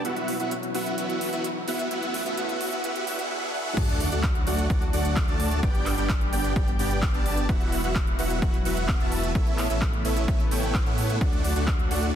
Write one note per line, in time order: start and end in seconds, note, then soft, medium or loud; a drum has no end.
0.00 1.87 B2 medium
0.00 riser medium
0.05 0.37 E1 medium
0.05 3.27 E3 medium
0.05 1.89 F#3 medium
0.05 0.37 B3 medium
0.05 3.27 E4 medium
0.05 0.37 E4 medium
0.05 1.89 F#4 medium
0.05 0.37 F#4 medium
0.05 0.37 E5 medium
0.05 0.37 F#5 medium
0.05 closed hi-hat medium
0.16 closed hi-hat soft
0.28 open hi-hat loud
0.40 0.72 E1 loud
0.40 0.54 B3 medium
0.40 0.54 E4 medium
0.40 0.54 F#4 medium
0.40 0.54 E5 medium
0.40 0.54 F#5 medium
0.40 closed hi-hat soft
0.51 closed hi-hat medium
0.63 closed hi-hat soft
0.75 0.96 E1 loud
0.75 0.95 B3 medium
0.75 0.95 E4 medium
0.75 0.95 F#4 medium
0.75 0.95 E5 medium
0.75 0.95 F#5 medium
0.75 open hi-hat loud
0.86 closed hi-hat medium
0.98 1.31 E1 loud
0.98 1.30 B3 medium
0.98 1.30 E4 medium
0.98 1.30 F#4 medium
0.98 1.30 E5 medium
0.98 1.30 F#5 medium
0.98 closed hi-hat medium
1.10 closed hi-hat soft
1.21 open hi-hat loud
1.33 1.65 E1 loud
1.33 1.47 B3 medium
1.33 1.47 E4 medium
1.33 1.47 F#4 medium
1.33 1.47 E5 medium
1.33 1.47 F#5 medium
1.33 closed hi-hat medium
1.44 closed hi-hat medium
1.68 1.89 E1 loud
1.68 1.88 B3 medium
1.68 1.88 E4 medium
1.68 1.88 F#4 medium
1.68 1.88 E5 medium
1.68 1.88 F#5 medium
1.68 open hi-hat loud
1.79 closed hi-hat medium
1.91 2.24 A1 loud
1.91 3.29 C#3 medium
1.91 3.29 A3 medium
1.91 2.23 B3 medium
1.91 3.29 B3 medium
1.91 2.23 E4 medium
1.91 2.23 F#4 medium
1.91 2.23 E5 medium
1.91 2.23 F#5 medium
1.91 closed hi-hat medium
2.03 closed hi-hat soft
2.14 open hi-hat loud
2.26 2.35 A1 medium
2.26 2.36 B3 medium
2.26 2.36 E4 medium
2.26 2.36 F#4 medium
2.26 2.36 E5 medium
2.26 2.36 F#5 medium
2.26 closed hi-hat soft
2.37 2.70 A1 loud
2.37 2.70 B3 medium
2.37 2.70 E4 medium
2.37 2.70 F#4 medium
2.37 2.70 E5 medium
2.37 2.70 F#5 medium
2.37 closed hi-hat medium
2.49 closed hi-hat soft
2.61 open hi-hat loud
2.72 2.82 A1 loud
2.72 2.82 B3 medium
2.72 2.82 E4 medium
2.72 2.82 F#4 medium
2.72 2.82 E5 medium
2.72 2.82 F#5 medium
2.72 closed hi-hat soft
2.84 3.05 A1 medium
2.84 3.05 B3 medium
2.84 3.05 E4 medium
2.84 3.05 F#4 medium
2.84 3.05 E5 medium
2.84 3.05 F#5 medium
2.84 closed hi-hat medium
2.84 swell medium
2.96 closed hi-hat soft
3.07 3.28 A1 loud
3.07 3.29 B3 medium
3.07 3.29 E4 medium
3.07 3.29 F#4 medium
3.07 3.29 E5 medium
3.07 3.29 F#5 medium
3.07 open hi-hat loud
3.19 closed hi-hat medium
3.31 3.52 B3 medium
3.31 3.52 E4 medium
3.31 3.52 F#4 medium
3.31 3.52 E5 medium
3.31 3.52 F#5 medium
3.54 3.75 B3 medium
3.54 3.75 E4 medium
3.54 3.75 F#4 medium
3.54 3.75 E5 medium
3.54 3.75 F#5 medium
3.77 4.10 D2 loud
3.77 5.61 A2 medium
3.77 7.45 D3 medium
3.77 5.61 F#3 medium
3.77 4.09 A3 medium
3.77 4.09 D4 medium
3.77 7.45 D4 medium
3.77 4.09 F#4 medium
3.77 5.61 F#4 medium
3.77 4.09 D5 medium
3.77 4.09 F#5 medium
3.77 kick loud
3.77 closed hi-hat medium
3.77 crash loud
3.77 sub drop medium
3.89 closed hi-hat soft
4.00 open hi-hat loud
4.12 4.44 D2 loud
4.12 4.26 A3 medium
4.12 4.26 D4 medium
4.12 4.26 F#4 medium
4.12 4.26 D5 medium
4.12 4.26 F#5 medium
4.12 closed hi-hat medium
4.23 kick loud
4.23 clap loud
4.23 closed hi-hat medium
4.35 closed hi-hat soft
4.47 4.68 D2 loud
4.47 4.67 A3 medium
4.47 4.67 D4 medium
4.47 4.67 F#4 medium
4.47 4.67 D5 medium
4.47 4.67 F#5 loud
4.47 open hi-hat loud
4.58 closed hi-hat medium
4.70 4.91 D2 medium
4.70 4.84 A3 medium
4.70 4.84 D4 medium
4.70 4.84 F#4 medium
4.70 4.84 D5 medium
4.70 4.84 F#5 medium
4.70 kick loud
4.70 closed hi-hat medium
4.82 closed hi-hat soft
4.93 5.26 D2 loud
4.93 5.25 A3 medium
4.93 5.25 D4 medium
4.93 5.25 F#4 medium
4.93 5.25 D5 medium
4.93 5.25 F#5 loud
4.93 open hi-hat loud
5.05 closed hi-hat medium
5.16 kick loud
5.16 clap loud
5.16 closed hi-hat medium
5.28 5.61 D2 loud
5.28 5.60 A3 medium
5.28 5.60 D4 medium
5.28 5.60 F#4 medium
5.28 5.60 D5 medium
5.28 5.60 A5 medium
5.28 closed hi-hat soft
5.40 open hi-hat loud
5.51 closed hi-hat medium
5.63 5.96 G1 loud
5.63 9.31 B2 medium
5.63 7.47 G3 medium
5.63 5.95 B3 medium
5.63 5.95 D4 medium
5.63 5.95 G4 medium
5.63 7.47 G4 loud
5.63 5.95 D5 medium
5.63 5.95 G5 medium
5.63 kick loud
5.63 closed hi-hat medium
5.75 closed hi-hat soft
5.86 clap medium
5.86 open hi-hat loud
5.98 6.30 G1 loud
5.98 6.12 B3 medium
5.98 6.12 D4 medium
5.98 6.12 G4 medium
5.98 6.12 D5 medium
5.98 6.12 G5 medium
5.98 closed hi-hat medium
6.09 kick loud
6.09 clap loud
6.09 closed hi-hat medium
6.21 closed hi-hat soft
6.33 6.54 G1 loud
6.33 6.53 B3 medium
6.33 6.53 D4 medium
6.33 6.53 G4 medium
6.33 6.53 D5 medium
6.33 6.53 G5 loud
6.33 open hi-hat loud
6.44 closed hi-hat medium
6.56 6.77 G1 loud
6.56 6.70 B3 medium
6.56 6.70 D4 medium
6.56 6.70 G4 medium
6.56 6.70 D5 medium
6.56 6.70 G5 medium
6.56 kick loud
6.56 closed hi-hat medium
6.68 closed hi-hat soft
6.79 7.12 G1 loud
6.79 7.11 B3 medium
6.79 7.11 D4 medium
6.79 7.11 G4 medium
6.79 7.11 D5 medium
6.79 7.11 G5 medium
6.79 open hi-hat loud
6.91 closed hi-hat medium
7.02 kick loud
7.02 clap loud
7.02 closed hi-hat medium
7.14 7.47 G1 loud
7.14 7.46 B3 medium
7.14 7.46 D4 medium
7.14 7.46 G4 medium
7.14 7.46 D5 medium
7.14 7.46 A5 medium
7.14 closed hi-hat soft
7.26 open hi-hat loud
7.37 closed hi-hat medium
7.49 7.82 E1 loud
7.49 11.17 E3 medium
7.49 9.33 F#3 medium
7.49 7.81 B3 medium
7.49 7.81 E4 medium
7.49 11.17 E4 medium
7.49 7.81 F#4 medium
7.49 9.33 F#4 loud
7.49 7.81 E5 medium
7.49 7.81 F#5 medium
7.49 kick loud
7.49 closed hi-hat medium
7.61 closed hi-hat soft
7.72 open hi-hat loud
7.84 8.17 E1 loud
7.84 7.98 B3 medium
7.84 7.98 E4 medium
7.84 7.98 F#4 medium
7.84 7.98 E5 medium
7.84 7.98 F#5 medium
7.84 closed hi-hat medium
7.95 kick loud
7.95 clap loud
7.95 closed hi-hat medium
8.07 closed hi-hat soft
8.19 8.40 E1 loud
8.19 8.39 B3 medium
8.19 8.39 E4 medium
8.19 8.39 F#4 medium
8.19 8.39 E5 medium
8.19 8.39 F#5 loud
8.19 open hi-hat loud
8.30 closed hi-hat medium
8.42 8.63 E1 medium
8.42 8.56 B3 medium
8.42 8.56 E4 medium
8.42 8.56 F#4 medium
8.42 8.56 E5 medium
8.42 8.56 F#5 medium
8.42 kick loud
8.42 closed hi-hat soft
8.54 closed hi-hat soft
8.65 8.98 E1 loud
8.65 8.97 B3 medium
8.65 8.97 E4 medium
8.65 8.97 F#4 medium
8.65 8.97 E5 medium
8.65 8.97 F#5 loud
8.65 open hi-hat loud
8.77 closed hi-hat medium
8.89 kick loud
8.89 clap loud
8.89 closed hi-hat medium
9.00 9.33 E1 loud
9.00 9.32 B3 medium
9.00 9.32 E4 medium
9.00 9.32 F#4 medium
9.00 9.32 E5 medium
9.00 9.32 A5 medium
9.00 closed hi-hat soft
9.12 open hi-hat loud
9.23 closed hi-hat soft
9.35 9.68 A1 loud
9.35 11.19 C#3 medium
9.35 11.19 A3 medium
9.35 9.67 B3 medium
9.35 11.19 B3 medium
9.35 9.67 E4 medium
9.35 9.67 A4 medium
9.35 9.67 C#5 medium
9.35 9.67 E5 medium
9.35 kick loud
9.35 closed hi-hat medium
9.47 closed hi-hat soft
9.58 clap medium
9.58 open hi-hat loud
9.70 10.03 A1 loud
9.70 9.84 B3 medium
9.70 9.84 E4 medium
9.70 9.84 A4 medium
9.70 9.84 C#5 medium
9.70 9.84 E5 medium
9.70 closed hi-hat medium
9.82 kick loud
9.82 clap loud
9.82 closed hi-hat soft
9.93 closed hi-hat soft
10.05 10.26 A1 loud
10.05 10.25 B3 medium
10.05 10.25 E4 medium
10.05 10.25 A4 medium
10.05 10.25 C#5 medium
10.05 10.25 E5 loud
10.05 open hi-hat loud
10.16 closed hi-hat soft
10.28 10.49 A1 loud
10.28 10.42 B3 medium
10.28 10.42 E4 medium
10.28 10.42 A4 medium
10.28 10.42 C#5 medium
10.28 10.42 E5 medium
10.28 kick loud
10.28 closed hi-hat soft
10.40 closed hi-hat soft
10.51 10.84 A1 loud
10.51 10.83 B3 medium
10.51 10.83 E4 medium
10.51 10.83 A4 medium
10.51 10.83 C#5 medium
10.51 10.83 G5 loud
10.51 open hi-hat loud
10.63 closed hi-hat soft
10.75 kick loud
10.75 clap loud
10.75 closed hi-hat medium
10.86 11.19 A2 medium
10.86 11.18 B3 medium
10.86 11.18 E4 medium
10.86 11.18 A4 medium
10.86 11.18 C#5 medium
10.86 11.18 F#5 medium
10.86 closed hi-hat soft
10.98 open hi-hat loud
11.10 closed hi-hat soft
11.21 11.54 D2 loud
11.21 12.15 A2 medium
11.21 12.15 D3 medium
11.21 12.15 F#3 medium
11.21 11.53 A3 medium
11.21 11.53 D4 medium
11.21 12.15 D4 medium
11.21 11.53 F#4 medium
11.21 12.15 F#4 medium
11.21 11.53 D5 medium
11.21 11.53 F#5 medium
11.21 kick loud
11.21 closed hi-hat medium
11.33 closed hi-hat soft
11.44 open hi-hat loud
11.56 11.89 D2 loud
11.56 11.70 A3 medium
11.56 11.70 D4 medium
11.56 11.70 F#4 medium
11.56 11.70 D5 medium
11.56 11.70 F#5 medium
11.56 closed hi-hat medium
11.68 kick loud
11.68 clap loud
11.68 closed hi-hat soft
11.79 closed hi-hat soft
11.91 12.12 D2 loud
11.91 12.11 A3 medium
11.91 12.11 D4 medium
11.91 12.11 F#4 medium
11.91 12.11 D5 medium
11.91 12.11 F#5 loud
11.91 open hi-hat loud
12.03 closed hi-hat medium